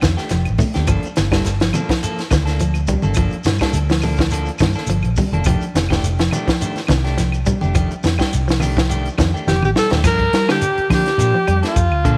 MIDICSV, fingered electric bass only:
0, 0, Header, 1, 3, 480
1, 0, Start_track
1, 0, Key_signature, -2, "minor"
1, 0, Tempo, 572519
1, 742, Time_signature, 4, 2, 24, 8
1, 10209, End_track
2, 0, Start_track
2, 0, Title_t, "Fingered electric bass"
2, 0, Program_c, 0, 33
2, 15, Note_on_c, 0, 41, 78
2, 130, Note_off_c, 0, 41, 0
2, 268, Note_on_c, 0, 29, 81
2, 377, Note_off_c, 0, 29, 0
2, 408, Note_on_c, 0, 33, 75
2, 497, Note_off_c, 0, 33, 0
2, 639, Note_on_c, 0, 39, 78
2, 724, Note_off_c, 0, 39, 0
2, 729, Note_on_c, 0, 31, 95
2, 846, Note_off_c, 0, 31, 0
2, 992, Note_on_c, 0, 31, 79
2, 1195, Note_off_c, 0, 31, 0
2, 1217, Note_on_c, 0, 31, 83
2, 1426, Note_off_c, 0, 31, 0
2, 1941, Note_on_c, 0, 38, 90
2, 2468, Note_off_c, 0, 38, 0
2, 2550, Note_on_c, 0, 31, 83
2, 2757, Note_off_c, 0, 31, 0
2, 2892, Note_on_c, 0, 43, 85
2, 3007, Note_off_c, 0, 43, 0
2, 3129, Note_on_c, 0, 38, 77
2, 3758, Note_off_c, 0, 38, 0
2, 3860, Note_on_c, 0, 43, 82
2, 3972, Note_off_c, 0, 43, 0
2, 4092, Note_on_c, 0, 31, 85
2, 4207, Note_off_c, 0, 31, 0
2, 4227, Note_on_c, 0, 34, 77
2, 4324, Note_off_c, 0, 34, 0
2, 4460, Note_on_c, 0, 29, 77
2, 4560, Note_off_c, 0, 29, 0
2, 4581, Note_on_c, 0, 29, 101
2, 4692, Note_off_c, 0, 29, 0
2, 4819, Note_on_c, 0, 29, 81
2, 5027, Note_off_c, 0, 29, 0
2, 5055, Note_on_c, 0, 29, 76
2, 5265, Note_off_c, 0, 29, 0
2, 5778, Note_on_c, 0, 36, 88
2, 6307, Note_off_c, 0, 36, 0
2, 6394, Note_on_c, 0, 29, 90
2, 6600, Note_off_c, 0, 29, 0
2, 6742, Note_on_c, 0, 41, 83
2, 6854, Note_off_c, 0, 41, 0
2, 6987, Note_on_c, 0, 36, 84
2, 7609, Note_off_c, 0, 36, 0
2, 7706, Note_on_c, 0, 41, 82
2, 7816, Note_off_c, 0, 41, 0
2, 7940, Note_on_c, 0, 29, 80
2, 8053, Note_off_c, 0, 29, 0
2, 8073, Note_on_c, 0, 33, 78
2, 8168, Note_off_c, 0, 33, 0
2, 8312, Note_on_c, 0, 39, 77
2, 8408, Note_off_c, 0, 39, 0
2, 8414, Note_on_c, 0, 43, 93
2, 8625, Note_off_c, 0, 43, 0
2, 8664, Note_on_c, 0, 55, 82
2, 8871, Note_off_c, 0, 55, 0
2, 9138, Note_on_c, 0, 53, 90
2, 9251, Note_off_c, 0, 53, 0
2, 9373, Note_on_c, 0, 46, 94
2, 9488, Note_off_c, 0, 46, 0
2, 9625, Note_on_c, 0, 41, 83
2, 9735, Note_off_c, 0, 41, 0
2, 9865, Note_on_c, 0, 41, 95
2, 9999, Note_off_c, 0, 41, 0
2, 9999, Note_on_c, 0, 38, 80
2, 10092, Note_off_c, 0, 38, 0
2, 10102, Note_on_c, 0, 46, 93
2, 10209, Note_off_c, 0, 46, 0
2, 10209, End_track
3, 0, Start_track
3, 0, Title_t, "Muted fingered electric bass strokes"
3, 2791, Note_on_c, 9, 29, 35
3, 2875, Note_off_c, 9, 29, 0
3, 4699, Note_on_c, 9, 29, 38
3, 4783, Note_off_c, 9, 29, 0
3, 6636, Note_on_c, 9, 29, 37
3, 6720, Note_off_c, 9, 29, 0
3, 9039, Note_on_c, 9, 29, 36
3, 9123, Note_off_c, 9, 29, 0
3, 10209, End_track
0, 0, End_of_file